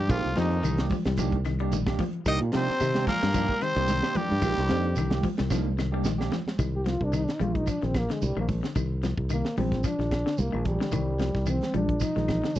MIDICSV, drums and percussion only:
0, 0, Header, 1, 3, 480
1, 0, Start_track
1, 0, Key_signature, -3, "minor"
1, 0, Tempo, 542005
1, 89, Time_signature, 4, 2, 24, 8
1, 11151, End_track
2, 0, Start_track
2, 0, Title_t, "Shekere"
2, 86, Note_on_c, 9, 82, 83
2, 174, Note_off_c, 9, 82, 0
2, 330, Note_on_c, 9, 82, 32
2, 418, Note_off_c, 9, 82, 0
2, 571, Note_on_c, 9, 82, 91
2, 660, Note_off_c, 9, 82, 0
2, 811, Note_on_c, 9, 82, 33
2, 900, Note_off_c, 9, 82, 0
2, 1048, Note_on_c, 9, 82, 102
2, 1137, Note_off_c, 9, 82, 0
2, 1286, Note_on_c, 9, 82, 30
2, 1374, Note_off_c, 9, 82, 0
2, 1528, Note_on_c, 9, 82, 100
2, 1616, Note_off_c, 9, 82, 0
2, 1768, Note_on_c, 9, 82, 30
2, 1857, Note_off_c, 9, 82, 0
2, 1999, Note_on_c, 9, 82, 90
2, 2088, Note_off_c, 9, 82, 0
2, 2244, Note_on_c, 9, 82, 31
2, 2332, Note_off_c, 9, 82, 0
2, 2482, Note_on_c, 9, 82, 78
2, 2570, Note_off_c, 9, 82, 0
2, 2721, Note_on_c, 9, 82, 30
2, 2810, Note_off_c, 9, 82, 0
2, 2961, Note_on_c, 9, 82, 99
2, 3049, Note_off_c, 9, 82, 0
2, 3197, Note_on_c, 9, 82, 29
2, 3285, Note_off_c, 9, 82, 0
2, 3433, Note_on_c, 9, 82, 87
2, 3521, Note_off_c, 9, 82, 0
2, 3679, Note_on_c, 9, 82, 29
2, 3768, Note_off_c, 9, 82, 0
2, 3913, Note_on_c, 9, 82, 93
2, 4002, Note_off_c, 9, 82, 0
2, 4157, Note_on_c, 9, 82, 29
2, 4245, Note_off_c, 9, 82, 0
2, 4391, Note_on_c, 9, 82, 83
2, 4480, Note_off_c, 9, 82, 0
2, 4634, Note_on_c, 9, 82, 28
2, 4723, Note_off_c, 9, 82, 0
2, 4875, Note_on_c, 9, 82, 97
2, 4964, Note_off_c, 9, 82, 0
2, 5121, Note_on_c, 9, 82, 27
2, 5209, Note_off_c, 9, 82, 0
2, 5351, Note_on_c, 9, 82, 96
2, 5440, Note_off_c, 9, 82, 0
2, 5597, Note_on_c, 9, 82, 31
2, 5686, Note_off_c, 9, 82, 0
2, 5836, Note_on_c, 9, 82, 86
2, 5924, Note_off_c, 9, 82, 0
2, 6069, Note_on_c, 9, 82, 29
2, 6158, Note_off_c, 9, 82, 0
2, 6312, Note_on_c, 9, 82, 81
2, 6401, Note_off_c, 9, 82, 0
2, 6554, Note_on_c, 9, 82, 29
2, 6643, Note_off_c, 9, 82, 0
2, 6792, Note_on_c, 9, 82, 95
2, 6881, Note_off_c, 9, 82, 0
2, 7042, Note_on_c, 9, 82, 29
2, 7131, Note_off_c, 9, 82, 0
2, 7280, Note_on_c, 9, 82, 98
2, 7368, Note_off_c, 9, 82, 0
2, 7513, Note_on_c, 9, 82, 30
2, 7602, Note_off_c, 9, 82, 0
2, 7757, Note_on_c, 9, 82, 87
2, 7845, Note_off_c, 9, 82, 0
2, 7995, Note_on_c, 9, 82, 29
2, 8083, Note_off_c, 9, 82, 0
2, 8235, Note_on_c, 9, 82, 78
2, 8323, Note_off_c, 9, 82, 0
2, 8480, Note_on_c, 9, 82, 26
2, 8569, Note_off_c, 9, 82, 0
2, 8710, Note_on_c, 9, 82, 89
2, 8798, Note_off_c, 9, 82, 0
2, 8955, Note_on_c, 9, 82, 29
2, 9043, Note_off_c, 9, 82, 0
2, 9190, Note_on_c, 9, 82, 85
2, 9279, Note_off_c, 9, 82, 0
2, 9431, Note_on_c, 9, 82, 27
2, 9520, Note_off_c, 9, 82, 0
2, 9665, Note_on_c, 9, 82, 80
2, 9753, Note_off_c, 9, 82, 0
2, 9909, Note_on_c, 9, 82, 31
2, 9998, Note_off_c, 9, 82, 0
2, 10149, Note_on_c, 9, 82, 85
2, 10238, Note_off_c, 9, 82, 0
2, 10390, Note_on_c, 9, 82, 28
2, 10478, Note_off_c, 9, 82, 0
2, 10627, Note_on_c, 9, 82, 100
2, 10716, Note_off_c, 9, 82, 0
2, 10880, Note_on_c, 9, 82, 30
2, 10968, Note_off_c, 9, 82, 0
2, 11120, Note_on_c, 9, 82, 96
2, 11151, Note_off_c, 9, 82, 0
2, 11151, End_track
3, 0, Start_track
3, 0, Title_t, "Drums"
3, 83, Note_on_c, 9, 42, 64
3, 85, Note_on_c, 9, 36, 97
3, 91, Note_on_c, 9, 75, 70
3, 172, Note_off_c, 9, 42, 0
3, 174, Note_off_c, 9, 36, 0
3, 179, Note_off_c, 9, 75, 0
3, 219, Note_on_c, 9, 42, 32
3, 307, Note_off_c, 9, 42, 0
3, 316, Note_on_c, 9, 63, 93
3, 320, Note_on_c, 9, 42, 45
3, 327, Note_on_c, 9, 38, 73
3, 405, Note_off_c, 9, 63, 0
3, 409, Note_off_c, 9, 42, 0
3, 416, Note_off_c, 9, 38, 0
3, 455, Note_on_c, 9, 42, 32
3, 544, Note_off_c, 9, 42, 0
3, 557, Note_on_c, 9, 64, 73
3, 560, Note_on_c, 9, 42, 74
3, 575, Note_on_c, 9, 75, 68
3, 645, Note_off_c, 9, 64, 0
3, 649, Note_off_c, 9, 42, 0
3, 664, Note_off_c, 9, 75, 0
3, 687, Note_on_c, 9, 42, 37
3, 695, Note_on_c, 9, 38, 79
3, 776, Note_off_c, 9, 42, 0
3, 783, Note_off_c, 9, 38, 0
3, 795, Note_on_c, 9, 63, 91
3, 795, Note_on_c, 9, 64, 87
3, 798, Note_on_c, 9, 46, 73
3, 803, Note_on_c, 9, 36, 76
3, 883, Note_off_c, 9, 63, 0
3, 883, Note_off_c, 9, 64, 0
3, 886, Note_off_c, 9, 46, 0
3, 892, Note_off_c, 9, 36, 0
3, 927, Note_on_c, 9, 42, 37
3, 934, Note_on_c, 9, 38, 85
3, 1016, Note_off_c, 9, 42, 0
3, 1023, Note_off_c, 9, 38, 0
3, 1035, Note_on_c, 9, 42, 68
3, 1041, Note_on_c, 9, 36, 79
3, 1044, Note_on_c, 9, 75, 72
3, 1124, Note_off_c, 9, 42, 0
3, 1130, Note_off_c, 9, 36, 0
3, 1132, Note_off_c, 9, 75, 0
3, 1164, Note_on_c, 9, 63, 76
3, 1169, Note_on_c, 9, 42, 30
3, 1172, Note_on_c, 9, 36, 65
3, 1252, Note_off_c, 9, 63, 0
3, 1258, Note_off_c, 9, 42, 0
3, 1261, Note_off_c, 9, 36, 0
3, 1282, Note_on_c, 9, 42, 52
3, 1287, Note_on_c, 9, 75, 75
3, 1290, Note_on_c, 9, 38, 26
3, 1371, Note_off_c, 9, 42, 0
3, 1376, Note_off_c, 9, 75, 0
3, 1378, Note_off_c, 9, 38, 0
3, 1411, Note_on_c, 9, 42, 35
3, 1500, Note_off_c, 9, 42, 0
3, 1522, Note_on_c, 9, 63, 92
3, 1523, Note_on_c, 9, 42, 68
3, 1611, Note_off_c, 9, 42, 0
3, 1611, Note_off_c, 9, 63, 0
3, 1652, Note_on_c, 9, 36, 73
3, 1655, Note_on_c, 9, 38, 73
3, 1658, Note_on_c, 9, 75, 61
3, 1740, Note_off_c, 9, 36, 0
3, 1743, Note_off_c, 9, 38, 0
3, 1747, Note_off_c, 9, 75, 0
3, 1759, Note_on_c, 9, 46, 65
3, 1761, Note_on_c, 9, 63, 99
3, 1761, Note_on_c, 9, 64, 91
3, 1762, Note_on_c, 9, 36, 75
3, 1848, Note_off_c, 9, 46, 0
3, 1849, Note_off_c, 9, 63, 0
3, 1849, Note_off_c, 9, 64, 0
3, 1851, Note_off_c, 9, 36, 0
3, 1887, Note_on_c, 9, 42, 36
3, 1975, Note_off_c, 9, 42, 0
3, 2000, Note_on_c, 9, 75, 68
3, 2001, Note_on_c, 9, 42, 62
3, 2002, Note_on_c, 9, 36, 92
3, 2089, Note_off_c, 9, 75, 0
3, 2090, Note_off_c, 9, 36, 0
3, 2090, Note_off_c, 9, 42, 0
3, 2132, Note_on_c, 9, 42, 36
3, 2221, Note_off_c, 9, 42, 0
3, 2232, Note_on_c, 9, 42, 56
3, 2238, Note_on_c, 9, 63, 85
3, 2239, Note_on_c, 9, 38, 68
3, 2321, Note_off_c, 9, 42, 0
3, 2327, Note_off_c, 9, 63, 0
3, 2328, Note_off_c, 9, 38, 0
3, 2377, Note_on_c, 9, 38, 31
3, 2465, Note_off_c, 9, 38, 0
3, 2480, Note_on_c, 9, 42, 80
3, 2484, Note_on_c, 9, 75, 78
3, 2568, Note_off_c, 9, 42, 0
3, 2573, Note_off_c, 9, 75, 0
3, 2604, Note_on_c, 9, 42, 37
3, 2611, Note_on_c, 9, 38, 75
3, 2612, Note_on_c, 9, 63, 78
3, 2693, Note_off_c, 9, 42, 0
3, 2700, Note_off_c, 9, 38, 0
3, 2701, Note_off_c, 9, 63, 0
3, 2716, Note_on_c, 9, 46, 75
3, 2717, Note_on_c, 9, 63, 87
3, 2717, Note_on_c, 9, 64, 91
3, 2719, Note_on_c, 9, 36, 72
3, 2723, Note_on_c, 9, 38, 33
3, 2805, Note_off_c, 9, 46, 0
3, 2805, Note_off_c, 9, 63, 0
3, 2805, Note_off_c, 9, 64, 0
3, 2808, Note_off_c, 9, 36, 0
3, 2812, Note_off_c, 9, 38, 0
3, 2852, Note_on_c, 9, 42, 38
3, 2859, Note_on_c, 9, 38, 80
3, 2940, Note_off_c, 9, 42, 0
3, 2947, Note_off_c, 9, 38, 0
3, 2958, Note_on_c, 9, 75, 64
3, 2961, Note_on_c, 9, 36, 80
3, 2961, Note_on_c, 9, 42, 81
3, 3046, Note_off_c, 9, 75, 0
3, 3049, Note_off_c, 9, 36, 0
3, 3049, Note_off_c, 9, 42, 0
3, 3087, Note_on_c, 9, 63, 76
3, 3089, Note_on_c, 9, 36, 63
3, 3175, Note_off_c, 9, 63, 0
3, 3177, Note_off_c, 9, 36, 0
3, 3196, Note_on_c, 9, 42, 53
3, 3199, Note_on_c, 9, 75, 71
3, 3203, Note_on_c, 9, 38, 29
3, 3285, Note_off_c, 9, 42, 0
3, 3288, Note_off_c, 9, 75, 0
3, 3292, Note_off_c, 9, 38, 0
3, 3323, Note_on_c, 9, 42, 36
3, 3330, Note_on_c, 9, 38, 31
3, 3411, Note_off_c, 9, 42, 0
3, 3418, Note_off_c, 9, 38, 0
3, 3433, Note_on_c, 9, 42, 69
3, 3436, Note_on_c, 9, 63, 86
3, 3440, Note_on_c, 9, 38, 30
3, 3521, Note_off_c, 9, 42, 0
3, 3525, Note_off_c, 9, 63, 0
3, 3528, Note_off_c, 9, 38, 0
3, 3569, Note_on_c, 9, 38, 73
3, 3574, Note_on_c, 9, 75, 60
3, 3658, Note_off_c, 9, 38, 0
3, 3663, Note_off_c, 9, 75, 0
3, 3671, Note_on_c, 9, 42, 54
3, 3678, Note_on_c, 9, 63, 109
3, 3678, Note_on_c, 9, 64, 88
3, 3760, Note_off_c, 9, 42, 0
3, 3767, Note_off_c, 9, 63, 0
3, 3767, Note_off_c, 9, 64, 0
3, 3799, Note_on_c, 9, 63, 80
3, 3807, Note_on_c, 9, 42, 35
3, 3887, Note_off_c, 9, 63, 0
3, 3895, Note_off_c, 9, 42, 0
3, 3909, Note_on_c, 9, 42, 67
3, 3914, Note_on_c, 9, 36, 82
3, 3928, Note_on_c, 9, 75, 68
3, 3998, Note_off_c, 9, 42, 0
3, 4003, Note_off_c, 9, 36, 0
3, 4016, Note_off_c, 9, 75, 0
3, 4039, Note_on_c, 9, 42, 32
3, 4046, Note_on_c, 9, 38, 32
3, 4128, Note_off_c, 9, 42, 0
3, 4135, Note_off_c, 9, 38, 0
3, 4148, Note_on_c, 9, 42, 45
3, 4152, Note_on_c, 9, 63, 100
3, 4155, Note_on_c, 9, 38, 74
3, 4237, Note_off_c, 9, 42, 0
3, 4240, Note_off_c, 9, 63, 0
3, 4244, Note_off_c, 9, 38, 0
3, 4280, Note_on_c, 9, 42, 35
3, 4369, Note_off_c, 9, 42, 0
3, 4389, Note_on_c, 9, 42, 69
3, 4395, Note_on_c, 9, 64, 65
3, 4396, Note_on_c, 9, 38, 30
3, 4408, Note_on_c, 9, 75, 78
3, 4477, Note_off_c, 9, 42, 0
3, 4483, Note_off_c, 9, 64, 0
3, 4485, Note_off_c, 9, 38, 0
3, 4497, Note_off_c, 9, 75, 0
3, 4519, Note_on_c, 9, 42, 35
3, 4523, Note_on_c, 9, 63, 72
3, 4527, Note_on_c, 9, 38, 77
3, 4608, Note_off_c, 9, 42, 0
3, 4612, Note_off_c, 9, 63, 0
3, 4615, Note_off_c, 9, 38, 0
3, 4632, Note_on_c, 9, 63, 94
3, 4632, Note_on_c, 9, 64, 81
3, 4634, Note_on_c, 9, 46, 68
3, 4636, Note_on_c, 9, 36, 71
3, 4720, Note_off_c, 9, 63, 0
3, 4720, Note_off_c, 9, 64, 0
3, 4722, Note_off_c, 9, 46, 0
3, 4724, Note_off_c, 9, 36, 0
3, 4757, Note_on_c, 9, 42, 36
3, 4764, Note_on_c, 9, 38, 80
3, 4846, Note_off_c, 9, 42, 0
3, 4853, Note_off_c, 9, 38, 0
3, 4875, Note_on_c, 9, 36, 73
3, 4878, Note_on_c, 9, 38, 57
3, 4882, Note_on_c, 9, 75, 72
3, 4963, Note_off_c, 9, 36, 0
3, 4967, Note_off_c, 9, 38, 0
3, 4970, Note_off_c, 9, 75, 0
3, 5002, Note_on_c, 9, 63, 81
3, 5090, Note_off_c, 9, 63, 0
3, 5124, Note_on_c, 9, 38, 66
3, 5126, Note_on_c, 9, 75, 76
3, 5213, Note_off_c, 9, 38, 0
3, 5215, Note_off_c, 9, 75, 0
3, 5358, Note_on_c, 9, 63, 92
3, 5359, Note_on_c, 9, 38, 68
3, 5447, Note_off_c, 9, 38, 0
3, 5447, Note_off_c, 9, 63, 0
3, 5498, Note_on_c, 9, 38, 72
3, 5499, Note_on_c, 9, 75, 62
3, 5587, Note_off_c, 9, 38, 0
3, 5587, Note_off_c, 9, 75, 0
3, 5595, Note_on_c, 9, 63, 97
3, 5595, Note_on_c, 9, 64, 85
3, 5600, Note_on_c, 9, 38, 86
3, 5683, Note_off_c, 9, 63, 0
3, 5683, Note_off_c, 9, 64, 0
3, 5688, Note_off_c, 9, 38, 0
3, 5726, Note_on_c, 9, 63, 71
3, 5736, Note_on_c, 9, 38, 81
3, 5815, Note_off_c, 9, 63, 0
3, 5825, Note_off_c, 9, 38, 0
3, 5835, Note_on_c, 9, 36, 87
3, 5837, Note_on_c, 9, 42, 58
3, 5838, Note_on_c, 9, 75, 62
3, 5844, Note_on_c, 9, 38, 23
3, 5924, Note_off_c, 9, 36, 0
3, 5925, Note_off_c, 9, 42, 0
3, 5926, Note_off_c, 9, 75, 0
3, 5932, Note_off_c, 9, 38, 0
3, 6076, Note_on_c, 9, 63, 90
3, 6079, Note_on_c, 9, 42, 50
3, 6087, Note_on_c, 9, 38, 59
3, 6165, Note_off_c, 9, 63, 0
3, 6168, Note_off_c, 9, 42, 0
3, 6175, Note_off_c, 9, 38, 0
3, 6206, Note_on_c, 9, 36, 64
3, 6294, Note_off_c, 9, 36, 0
3, 6316, Note_on_c, 9, 75, 63
3, 6320, Note_on_c, 9, 42, 78
3, 6404, Note_off_c, 9, 75, 0
3, 6408, Note_off_c, 9, 42, 0
3, 6446, Note_on_c, 9, 42, 33
3, 6453, Note_on_c, 9, 38, 68
3, 6535, Note_off_c, 9, 42, 0
3, 6542, Note_off_c, 9, 38, 0
3, 6554, Note_on_c, 9, 63, 79
3, 6554, Note_on_c, 9, 64, 81
3, 6559, Note_on_c, 9, 42, 57
3, 6642, Note_off_c, 9, 63, 0
3, 6642, Note_off_c, 9, 64, 0
3, 6648, Note_off_c, 9, 42, 0
3, 6687, Note_on_c, 9, 36, 65
3, 6688, Note_on_c, 9, 42, 36
3, 6776, Note_off_c, 9, 36, 0
3, 6776, Note_off_c, 9, 42, 0
3, 6793, Note_on_c, 9, 75, 60
3, 6797, Note_on_c, 9, 36, 66
3, 6800, Note_on_c, 9, 42, 74
3, 6882, Note_off_c, 9, 75, 0
3, 6885, Note_off_c, 9, 36, 0
3, 6888, Note_off_c, 9, 42, 0
3, 6925, Note_on_c, 9, 42, 33
3, 6932, Note_on_c, 9, 38, 26
3, 7013, Note_off_c, 9, 42, 0
3, 7020, Note_off_c, 9, 38, 0
3, 7035, Note_on_c, 9, 42, 54
3, 7035, Note_on_c, 9, 64, 67
3, 7036, Note_on_c, 9, 36, 67
3, 7039, Note_on_c, 9, 75, 72
3, 7042, Note_on_c, 9, 38, 68
3, 7123, Note_off_c, 9, 64, 0
3, 7124, Note_off_c, 9, 36, 0
3, 7124, Note_off_c, 9, 42, 0
3, 7127, Note_off_c, 9, 75, 0
3, 7131, Note_off_c, 9, 38, 0
3, 7166, Note_on_c, 9, 42, 33
3, 7173, Note_on_c, 9, 38, 65
3, 7254, Note_off_c, 9, 42, 0
3, 7261, Note_off_c, 9, 38, 0
3, 7276, Note_on_c, 9, 63, 78
3, 7282, Note_on_c, 9, 42, 57
3, 7364, Note_off_c, 9, 63, 0
3, 7370, Note_off_c, 9, 42, 0
3, 7412, Note_on_c, 9, 75, 57
3, 7501, Note_off_c, 9, 75, 0
3, 7515, Note_on_c, 9, 46, 59
3, 7516, Note_on_c, 9, 36, 67
3, 7519, Note_on_c, 9, 63, 90
3, 7519, Note_on_c, 9, 64, 75
3, 7604, Note_off_c, 9, 46, 0
3, 7605, Note_off_c, 9, 36, 0
3, 7608, Note_off_c, 9, 63, 0
3, 7608, Note_off_c, 9, 64, 0
3, 7647, Note_on_c, 9, 42, 32
3, 7654, Note_on_c, 9, 38, 73
3, 7735, Note_off_c, 9, 42, 0
3, 7742, Note_off_c, 9, 38, 0
3, 7751, Note_on_c, 9, 42, 57
3, 7755, Note_on_c, 9, 36, 78
3, 7762, Note_on_c, 9, 75, 63
3, 7839, Note_off_c, 9, 42, 0
3, 7844, Note_off_c, 9, 36, 0
3, 7850, Note_off_c, 9, 75, 0
3, 7996, Note_on_c, 9, 42, 49
3, 8002, Note_on_c, 9, 63, 85
3, 8003, Note_on_c, 9, 38, 66
3, 8085, Note_off_c, 9, 42, 0
3, 8091, Note_off_c, 9, 63, 0
3, 8092, Note_off_c, 9, 38, 0
3, 8125, Note_on_c, 9, 36, 74
3, 8214, Note_off_c, 9, 36, 0
3, 8228, Note_on_c, 9, 42, 65
3, 8250, Note_on_c, 9, 75, 74
3, 8317, Note_off_c, 9, 42, 0
3, 8338, Note_off_c, 9, 75, 0
3, 8367, Note_on_c, 9, 38, 66
3, 8456, Note_off_c, 9, 38, 0
3, 8474, Note_on_c, 9, 46, 63
3, 8481, Note_on_c, 9, 63, 87
3, 8481, Note_on_c, 9, 64, 85
3, 8562, Note_off_c, 9, 46, 0
3, 8569, Note_off_c, 9, 63, 0
3, 8569, Note_off_c, 9, 64, 0
3, 8607, Note_on_c, 9, 36, 69
3, 8607, Note_on_c, 9, 42, 33
3, 8614, Note_on_c, 9, 38, 32
3, 8695, Note_off_c, 9, 36, 0
3, 8696, Note_off_c, 9, 42, 0
3, 8703, Note_off_c, 9, 38, 0
3, 8716, Note_on_c, 9, 36, 76
3, 8717, Note_on_c, 9, 42, 68
3, 8723, Note_on_c, 9, 75, 66
3, 8724, Note_on_c, 9, 38, 28
3, 8804, Note_off_c, 9, 36, 0
3, 8806, Note_off_c, 9, 42, 0
3, 8812, Note_off_c, 9, 75, 0
3, 8813, Note_off_c, 9, 38, 0
3, 8848, Note_on_c, 9, 42, 31
3, 8855, Note_on_c, 9, 38, 28
3, 8936, Note_off_c, 9, 42, 0
3, 8943, Note_off_c, 9, 38, 0
3, 8956, Note_on_c, 9, 36, 61
3, 8957, Note_on_c, 9, 42, 51
3, 8963, Note_on_c, 9, 75, 76
3, 8964, Note_on_c, 9, 38, 71
3, 9045, Note_off_c, 9, 36, 0
3, 9045, Note_off_c, 9, 42, 0
3, 9052, Note_off_c, 9, 38, 0
3, 9052, Note_off_c, 9, 75, 0
3, 9091, Note_on_c, 9, 38, 72
3, 9180, Note_off_c, 9, 38, 0
3, 9194, Note_on_c, 9, 63, 88
3, 9195, Note_on_c, 9, 42, 61
3, 9282, Note_off_c, 9, 63, 0
3, 9283, Note_off_c, 9, 42, 0
3, 9328, Note_on_c, 9, 75, 65
3, 9417, Note_off_c, 9, 75, 0
3, 9434, Note_on_c, 9, 63, 97
3, 9434, Note_on_c, 9, 64, 86
3, 9435, Note_on_c, 9, 42, 50
3, 9437, Note_on_c, 9, 36, 69
3, 9523, Note_off_c, 9, 63, 0
3, 9523, Note_off_c, 9, 64, 0
3, 9524, Note_off_c, 9, 42, 0
3, 9525, Note_off_c, 9, 36, 0
3, 9562, Note_on_c, 9, 63, 74
3, 9575, Note_on_c, 9, 38, 73
3, 9651, Note_off_c, 9, 63, 0
3, 9663, Note_off_c, 9, 38, 0
3, 9677, Note_on_c, 9, 36, 83
3, 9677, Note_on_c, 9, 42, 71
3, 9678, Note_on_c, 9, 75, 63
3, 9766, Note_off_c, 9, 36, 0
3, 9766, Note_off_c, 9, 42, 0
3, 9767, Note_off_c, 9, 75, 0
3, 9914, Note_on_c, 9, 63, 87
3, 9917, Note_on_c, 9, 42, 50
3, 9925, Note_on_c, 9, 38, 68
3, 10002, Note_off_c, 9, 63, 0
3, 10006, Note_off_c, 9, 42, 0
3, 10013, Note_off_c, 9, 38, 0
3, 10048, Note_on_c, 9, 36, 73
3, 10053, Note_on_c, 9, 38, 30
3, 10137, Note_off_c, 9, 36, 0
3, 10141, Note_off_c, 9, 38, 0
3, 10150, Note_on_c, 9, 64, 74
3, 10155, Note_on_c, 9, 75, 67
3, 10156, Note_on_c, 9, 42, 74
3, 10239, Note_off_c, 9, 64, 0
3, 10244, Note_off_c, 9, 75, 0
3, 10245, Note_off_c, 9, 42, 0
3, 10283, Note_on_c, 9, 63, 75
3, 10289, Note_on_c, 9, 42, 34
3, 10296, Note_on_c, 9, 38, 60
3, 10371, Note_off_c, 9, 63, 0
3, 10378, Note_off_c, 9, 42, 0
3, 10385, Note_off_c, 9, 38, 0
3, 10398, Note_on_c, 9, 42, 55
3, 10400, Note_on_c, 9, 63, 77
3, 10400, Note_on_c, 9, 64, 85
3, 10486, Note_off_c, 9, 42, 0
3, 10489, Note_off_c, 9, 63, 0
3, 10489, Note_off_c, 9, 64, 0
3, 10529, Note_on_c, 9, 36, 68
3, 10530, Note_on_c, 9, 42, 36
3, 10617, Note_off_c, 9, 36, 0
3, 10619, Note_off_c, 9, 42, 0
3, 10636, Note_on_c, 9, 75, 63
3, 10638, Note_on_c, 9, 42, 75
3, 10639, Note_on_c, 9, 36, 74
3, 10645, Note_on_c, 9, 38, 30
3, 10725, Note_off_c, 9, 75, 0
3, 10726, Note_off_c, 9, 42, 0
3, 10728, Note_off_c, 9, 36, 0
3, 10733, Note_off_c, 9, 38, 0
3, 10768, Note_on_c, 9, 63, 74
3, 10772, Note_on_c, 9, 42, 34
3, 10779, Note_on_c, 9, 38, 27
3, 10857, Note_off_c, 9, 63, 0
3, 10860, Note_off_c, 9, 42, 0
3, 10867, Note_off_c, 9, 38, 0
3, 10877, Note_on_c, 9, 75, 67
3, 10878, Note_on_c, 9, 42, 51
3, 10880, Note_on_c, 9, 36, 66
3, 10883, Note_on_c, 9, 64, 79
3, 10885, Note_on_c, 9, 38, 64
3, 10965, Note_off_c, 9, 75, 0
3, 10966, Note_off_c, 9, 42, 0
3, 10968, Note_off_c, 9, 36, 0
3, 10972, Note_off_c, 9, 64, 0
3, 10974, Note_off_c, 9, 38, 0
3, 11013, Note_on_c, 9, 42, 33
3, 11020, Note_on_c, 9, 38, 73
3, 11101, Note_off_c, 9, 42, 0
3, 11108, Note_off_c, 9, 38, 0
3, 11121, Note_on_c, 9, 42, 65
3, 11123, Note_on_c, 9, 63, 82
3, 11151, Note_off_c, 9, 42, 0
3, 11151, Note_off_c, 9, 63, 0
3, 11151, End_track
0, 0, End_of_file